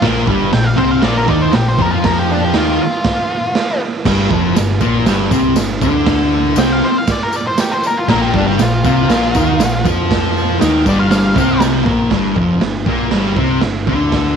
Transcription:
0.02 A#1 A#2 A#3, kick, snare, open hi-hat
0.26 G1 G2 G3, kick
0.52 A#1 A#2 G5, snare, open hi-hat
0.64 F5
0.76 C2 C3 C4 C5, kick
0.91 F5
1.02 A#1 A#2 A#3 D5, snare, open hi-hat
1.17 A#4
1.27 D#2 D#3 D#4 D5, kick
1.42 C5
1.53 A#1 A#2 G4, snare, open hi-hat
1.68 C5
1.79 F2 F3 F4 A#4, kick
1.91 F4
2.04 A#4, kick, snare, open hi-hat
2.19 G4
2.31 D4
2.45 G4
2.53 D#2 D#3 D#4, snare, open hi-hat
2.58 F4
2.83 F4
3.04 kick, snare, open hi-hat
3.55 snare, open hi-hat
4.05 G1 G2 G3, kick, snare, crash, tambourine
4.30 F1 F2 F3, kick
4.55 G1 G2, snare, open hi-hat, tambourine
4.80 A#1 A#2 A#3, kick, tambourine
5.06 G1 G2 G3, snare, open hi-hat, tambourine
5.31 C2 C3 C4, kick, tambourine
5.56 G1 G2, snare, open hi-hat, tambourine
5.81 D2 D3 D4, kick, tambourine
6.06 kick, snare, open hi-hat, tambourine
6.56 C2 C3 C4 G5, snare, open hi-hat, tambourine
6.72 F5
6.84 C5
6.98 F5
7.07 kick, snare, open hi-hat, tambourine
7.11 D5
7.23 A#4
7.33 D5, tambourine
7.47 C5
7.57 G4, snare, open hi-hat, tambourine
7.72 C5
7.84 A#4, tambourine
7.98 F4
8.08 A#1 A#2 A#3 A#4, kick, snare, open hi-hat, tambourine
8.22 G4
8.33 G1 G2 G3 D4, kick
8.48 G4
8.58 A#1 A#2, snare, open hi-hat, tambourine
8.62 F4
8.84 C2 C3 C4 F4, kick, tambourine
9.08 A#1 A#2 A#3, snare, open hi-hat, tambourine
9.35 D#2 D#3 D#4, kick, tambourine
9.59 A#1 A#2, snare, open hi-hat, tambourine
9.84 F2 F3 F4, kick, tambourine
10.11 kick, snare, open hi-hat, tambourine
10.38 tambourine
10.60 D#2 D#3 D#4, snare, open hi-hat, tambourine
10.86 G1 G2 G3 D5, kick, tambourine
11.00 F5
11.11 F5, snare, open hi-hat, tambourine
11.35 C2 C3 C4, kick, tambourine
11.60 snare, open hi-hat, tambourine
11.85 A#1 A#2 A#3, kick
12.11 G1 G2 G3, kick, snare, open hi-hat
12.35 F1 F2 F3, kick
12.61 G1 G2, snare, open hi-hat
12.86 A#1 A#2 A#3, kick
13.11 G1 G2 G3, snare, open hi-hat
13.36 C2 C3 C4, kick
13.61 G1 G2, snare, open hi-hat
13.87 D2 D3 D4, kick
14.12 kick, snare, open hi-hat

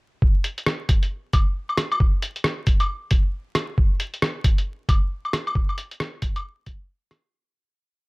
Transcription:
0.22 kick
0.44 closed hi-hat
0.58 closed hi-hat
0.66 cross-stick
0.89 kick, closed hi-hat
1.03 closed hi-hat
1.33 kick, closed hi-hat, claves
1.69 claves
1.78 cross-stick, closed hi-hat
1.92 claves
2.00 kick
2.22 closed hi-hat
2.36 closed hi-hat
2.44 cross-stick
2.67 kick, closed hi-hat
2.80 closed hi-hat, claves
3.11 kick, closed hi-hat
3.55 cross-stick, closed hi-hat
3.78 kick
4.00 closed hi-hat
4.14 closed hi-hat
4.22 cross-stick
4.44 kick, closed hi-hat
4.58 closed hi-hat
4.89 kick, closed hi-hat, claves
5.25 claves
5.33 cross-stick, closed hi-hat
5.47 claves
5.55 kick
5.69 claves
5.78 closed hi-hat
5.91 closed hi-hat
6.00 cross-stick
6.22 kick, closed hi-hat
6.36 closed hi-hat, claves
6.66 kick, closed hi-hat
7.11 cross-stick, closed hi-hat

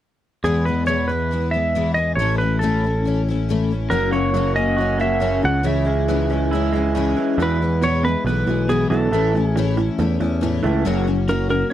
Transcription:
0.44 E2 B2 E3 G#3 B3 E4 G#4
0.65 E3 G#3 B3 E4 B4
0.86 E2 B2 E3 G#3 B3 E4 C#5
1.08 G#3 B3 E4 B4
1.12 E3
1.31 E3 G#3 B3 E4
1.51 G#3 B3 E4 E5
1.56 E3
1.75 E2 B2 E3 G#3 B3 E4
1.94 G#3 B3 E4 D#5
1.99 E3
2.15 A1 A2 E3 C#5
2.20 A3 C#4 E4
2.38 C#4 E4 B4
2.44 A3
2.59 A2 E3 A4
2.63 A3 C#4 E4
2.84 A3 C#4 E4
3.05 E3 A3 C#4 E4
3.29 A3 C#4 E4
3.49 A2 E3 A3 C#4 E4
3.71 A3 C#4 E4
3.90 F#1 F#2 C#3 F#3 A#3 C#4 F#4 A#4
4.13 F#3 A#3 C#4 F#4 C#5
4.34 F#2 C#3 F#3 A#3 C#4 F#4
4.56 F#3 A#3 C#4 F#4 D#5
4.77 F#3 A#3 F#4
4.81 C#4 F#4
4.98 A#3 C#4 F#4 E5
5.02 F#3 A#3
5.20 F#2 C#3 F#3 A#3 C#4 F#4
5.42 C#2 C#3 G#3 C#4 E4 F#5
5.63 C#3 E3 G#3 C#4 E4 E5
5.85 G#3 C#4 E4
6.08 C#3 E3 G#3 C#4 E4
6.30 G#3 C#4 E4
6.53 E3 G#3 C#4 E4
6.72 G#3 C#4 E4
6.77 G#3
6.95 C#3 E3 G#3 C#4 E4
7.17 E3 G#3 C#4 E4
7.38 E2 B2 E3 G#3 B3 E4
7.42 B4
7.60 E2 B2 G#3 B3 E4
7.64 E3
7.82 E2 B2 E3 G#3 B3 E4 C#5
8.03 E2 B2 B3 E4 B4
8.08 E3 G#3
8.25 B1 E2 B2 E3 G#3 B3 B4
8.29 E4
8.46 B1 E2 B2 E3 G#3 B3 E4
8.69 E2 B2 E3 G#3 B3 E4 G#4
8.90 B1 E2 B2 E3 G#3 B3 E4 A4
9.11 A1 A2 E3 A3 C#4
9.15 E4
9.34 A2 E3 A3 C#4 E4
9.46 G#4
9.57 A2 E3 A3 C#4 E4
9.77 A2 E3 A3 C#4 E4
9.99 E2 A2 E3 A3 C#4 E4
10.20 E2 A2 E3 A3 C#4 E4
10.41 A2 E3 A3 C#4 E4
10.63 C#2 A2 E3 C#4 E4
10.67 A3
10.85 F#1 F#2 C#3 F#3 A#3 C#4 F#4
11.07 F#2 C#3 F#3 A#3 C#4 F#4
11.28 F#2 C#3 F#3 A#3 C#4 F#4 A#4
11.49 F#2 C#3 F#3 A#3 C#4 F#4 A#4

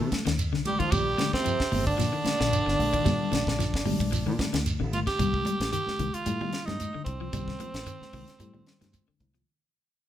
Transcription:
Already playing: A3 A4
0.00 C3 D#3
0.12 kick, snare, ride bell, high conga, shekere
0.26 D#2 D#3, snare, ride bell
0.38 ride bell, shekere
0.53 C2 D3, snare
0.65 A1 G3 G4, ride bell, high conga, shekere
0.79 D#3 F3 F4, kick, ride bell
0.91 A#1 F3 G3 G4, kick, ride bell, low conga, shekere
1.18 D3, snare, ride bell, high conga, shekere
1.33 C3 C4, kick, snare
1.45 F3, ride bell, shekere
1.60 kick, snare
1.72 G1, muted clean electric guitar stroke, open hi-hat, high conga, low conga, shekere
1.86 D3 D4, kick
1.98 A#2 F3, snare, ride bell, shekere
2.13 D#3
2.25 muted fingered electric bass stroke, snare, ride bell, high conga, shekere
2.40 A#1 A#2, snare
2.53 ride bell, shekere
2.66 G1 D3, snare
2.79 A#1, open hi-hat, high conga, shekere
2.93 D#3, kick, ride bell
3.05 A#2 G3, kick, snare, ride bell, low conga, shekere
3.32 A#1 D3, snare, ride bell, high conga
3.47 A#1, kick, snare
3.59 F3, snare, ride bell, shekere
3.74 G1, kick, snare
3.85 G3, open hi-hat, high conga, low conga, shekere
4.00 A#1, kick, ride bell
4.12 F3, ride bell, high conga, shekere
4.26 A#2 D#3
4.39 kick, snare, ride bell, high conga, shekere
4.53 D2 D#3, snare, ride bell
4.66 ride bell, shekere
4.80 A#1 D3
4.92 G1 F4, ride bell, high conga, shekere
5.07 G4, muted clean electric guitar stroke, kick, snare, ride bell
5.19 C2 G3, kick, closed hi-hat, low conga, shekere
5.33 kick, high conga
5.45 G3, closed hi-hat, high conga, shekere
5.60 A1, snare, closed hi-hat
5.72 D#3 G4, closed hi-hat, shekere
5.87 muted fingered electric bass stroke, snare, high conga
5.99 C2 D#3, kick, closed hi-hat, high conga, shekere
6.14 F4, muted fingered electric bass stroke, closed hi-hat
6.26 A2 G3, closed hi-hat, high conga, shekere
6.41 G3, low conga
6.53 snare, closed hi-hat, shekere
6.66 G2 D#4, snare, high conga
6.80 closed hi-hat, high conga, shekere
6.94 D3, muted fingered electric bass stroke
7.04 C2 C4, kick, closed hi-hat, shekere
7.21 F3
7.33 C2 G3, kick, closed hi-hat, low conga, shekere
7.48 kick, snare
7.60 F3, closed hi-hat, high conga, shekere
7.74 A1, snare, closed hi-hat
7.86 D#3, closed hi-hat, shekere
8.01 muted fingered electric bass stroke, snare, high conga
8.13 C2 D#3, kick, open hi-hat, high conga, shekere
8.28 snare, closed hi-hat
8.39 A2 G3, closed hi-hat, shekere
8.54 G3, low conga
8.66 snare, closed hi-hat, shekere
8.81 G2 D#3, snare, closed hi-hat, high conga
8.93 kick, closed hi-hat, high conga, shekere
9.08 D3, muted fingered electric bass stroke
9.19 C2, kick, closed hi-hat, high conga, shekere
9.34 F3, closed hi-hat, low conga

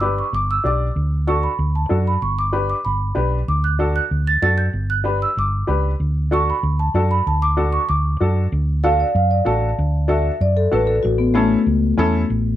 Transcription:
Already playing: G1
0.01 D4 G4 B4 D6
0.18 C#6
0.33 G1 D6
0.51 E6
0.64 B1 D4 G4 D5 D6
0.96 D2
1.27 D4 F#4 A4 C#6
1.43 B5
1.59 D2
1.75 A5
1.89 F#2 D4 F#4 A4
2.07 B5
2.22 G1 C#6
2.39 D6
2.52 D4 G4 B4
2.70 D6
2.85 G1 B5
3.15 B1 D4 G4 B4
3.48 D2 D6
3.64 F#6
3.79 D4 F#4 A4
3.96 F#6
4.11 D2
4.27 A6
4.42 F#2 D4 F#4 A4 A6
4.58 G6
4.73 G1
4.90 F#6
5.04 D4 G4 B4
5.22 E6
5.37 G1 D6
5.67 C#2 D4 G4 B4
6.00 D2
6.31 D4 F#4 A4 C#6
6.50 B5
6.63 D2
6.79 A5
6.94 F#2 D4 F#4 A4
7.11 B5
7.27 D2 A5
7.42 D6
7.57 D4 F#4 A4
7.72 C#6
7.89 D2 D6
8.20 F#2 D4 F#4 A4
8.52 D2
8.84 D4 F#4 A4 F5
9.00 D5
9.15 F#2 F5
9.31 D5
9.45 A1 D4 F#4 A4 A5
9.78 D2
10.08 D4 F#4 A4 E5
10.41 F#2 D5
10.57 A4
10.71 A1 D4 F#4 A4 B4
10.87 A4
11.03 A1 F#4
11.18 B3
11.34 A3 C#4 E4 A4
11.66 C#2
11.98 E2 C#4 E4 A4
12.30 A1

